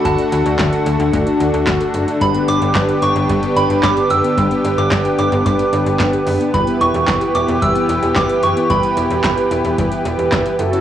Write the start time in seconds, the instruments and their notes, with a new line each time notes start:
Already playing: analog synth pad D3 A3 F#4, analog polysynth D4 F#4 A4
0.05 fm bass D2, synth arpeggio sound A3, synth bell A5, kick, closed hi-hat
0.18 synth arpeggio sound D4, closed hi-hat
0.32 fm bass D2, synth arpeggio sound F#4, closed hi-hat
0.46 fm bass D2, synth arpeggio sound A4, closed hi-hat
0.59 fm bass D2, synth arpeggio sound A5, kick, snare, clap, closed hi-hat
0.73 synth arpeggio sound A4, closed hi-hat
0.86 fm bass D2, synth arpeggio sound F#4, closed hi-hat
1.00 fm bass D2, synth arpeggio sound D4, closed hi-hat
1.13 fm bass D2, synth arpeggio sound A3, kick, closed hi-hat
1.27 synth arpeggio sound D4, closed hi-hat
1.40 fm bass D2, synth arpeggio sound F#4, closed hi-hat
1.54 fm bass D2, synth arpeggio sound A4, closed hi-hat
1.67 fm bass D2, synth arpeggio sound A5, kick, snare, clap, closed hi-hat
1.81 synth arpeggio sound A4, closed hi-hat
1.94 fm bass F#1, synth arpeggio sound F#4, closed hi-hat
2.08 synth arpeggio sound D4, closed hi-hat
2.21 fm bass G1, synth arpeggio sound G3, analog synth pad B3 G4, analog polysynth D4 G4 B4, synth bell B5, kick, closed hi-hat
2.35 synth arpeggio sound B3, closed hi-hat
2.48 fm bass G1, synth arpeggio sound D4, synth bell D6, closed hi-hat
2.62 fm bass G1, synth arpeggio sound G4, closed hi-hat
2.75 fm bass G1, synth arpeggio sound G5, kick, snare, clap, closed hi-hat
2.89 synth arpeggio sound G4, closed hi-hat
3.02 fm bass G1, synth arpeggio sound D4, synth bell C#6, closed hi-hat
3.16 fm bass G1, synth arpeggio sound B3, closed hi-hat
3.29 fm bass G1, synth arpeggio sound G3, kick, closed hi-hat
3.43 synth arpeggio sound B3, closed hi-hat
3.56 fm bass G1, synth arpeggio sound D4, synth bell B5, closed hi-hat
3.70 fm bass G1, synth arpeggio sound G4, closed hi-hat
3.83 fm bass G1, synth arpeggio sound G5, synth bell D6, kick, snare, clap, closed hi-hat
3.97 synth arpeggio sound G4, closed hi-hat
4.10 fm bass F#1, synth arpeggio sound D4, synth bell E6, closed hi-hat
4.24 synth arpeggio sound B3, closed hi-hat
4.38 fm bass G1, synth arpeggio sound G3, kick, closed hi-hat
4.51 synth arpeggio sound B3, closed hi-hat
4.65 fm bass G1, synth arpeggio sound D4, closed hi-hat
4.78 fm bass G1, synth arpeggio sound G4, synth bell D6, closed hi-hat
4.91 fm bass G1, synth arpeggio sound G5, kick, snare, clap, closed hi-hat
5.05 synth arpeggio sound G4, closed hi-hat
5.19 fm bass G1, synth arpeggio sound D4, synth bell D6, closed hi-hat
5.32 fm bass G1, synth arpeggio sound B3, closed hi-hat
5.46 fm bass G1, synth arpeggio sound G3, synth bell D6, kick, closed hi-hat
5.59 synth arpeggio sound B3, closed hi-hat
5.73 fm bass G1, synth arpeggio sound D4, closed hi-hat
5.86 fm bass G1, synth arpeggio sound G4, closed hi-hat
6.00 fm bass G1, synth arpeggio sound G5, kick, snare, clap, closed hi-hat
6.13 synth arpeggio sound G4, closed hi-hat
6.27 fm bass F#1, synth arpeggio sound D4, open hi-hat
6.40 synth arpeggio sound B3, closed hi-hat
6.54 fm bass E1, analog synth pad E3 G4, synth arpeggio sound G3, analog polysynth E4 G4 B4, synth bell B5, kick, closed hi-hat
6.67 synth arpeggio sound B3, closed hi-hat
6.81 fm bass E1, synth arpeggio sound E4, synth bell C#6, closed hi-hat
6.94 fm bass E1, synth arpeggio sound G4, closed hi-hat
7.08 fm bass E1, synth arpeggio sound G5, kick, snare, clap, closed hi-hat
7.21 synth arpeggio sound G4, closed hi-hat
7.35 fm bass E1, synth arpeggio sound E4, synth bell D6, closed hi-hat
7.48 fm bass E1, synth arpeggio sound B3, closed hi-hat
7.62 fm bass E1, synth arpeggio sound G3, synth bell E6, kick, closed hi-hat
7.75 synth arpeggio sound B3, closed hi-hat
7.89 fm bass E1, synth arpeggio sound E4, closed hi-hat
8.02 fm bass E1, synth arpeggio sound G4, closed hi-hat
8.16 fm bass E1, synth arpeggio sound G5, synth bell D6, kick, snare, clap, closed hi-hat
8.29 synth arpeggio sound G4, closed hi-hat
8.43 fm bass F#1, synth arpeggio sound E4, synth bell C#6, closed hi-hat
8.57 synth arpeggio sound B3, closed hi-hat
8.70 fm bass E1, synth arpeggio sound G3, synth bell B5, kick, closed hi-hat
8.83 synth arpeggio sound B3, closed hi-hat
8.97 fm bass E1, synth arpeggio sound E4, closed hi-hat
9.11 fm bass E1, synth arpeggio sound G4, closed hi-hat
9.24 fm bass E1, synth arpeggio sound G5, kick, snare, clap, closed hi-hat
9.38 synth arpeggio sound G4, closed hi-hat
9.51 fm bass E1, synth arpeggio sound E4, closed hi-hat
9.65 fm bass E1, synth arpeggio sound B3, closed hi-hat
9.78 fm bass E1, synth arpeggio sound G3, kick, closed hi-hat
9.92 synth arpeggio sound B3, closed hi-hat
10.05 fm bass E1, synth arpeggio sound E4, closed hi-hat
10.19 fm bass E1, synth arpeggio sound G4, closed hi-hat
10.32 fm bass E1, synth arpeggio sound G5, kick, snare, clap, closed hi-hat
10.46 synth arpeggio sound G4, closed hi-hat
10.59 fm bass F#1, analog synth pad E3 A3 F#4, analog polysynth E4 F#4 A4, synth arpeggio sound E4, closed hi-hat
10.73 synth arpeggio sound C#4, closed hi-hat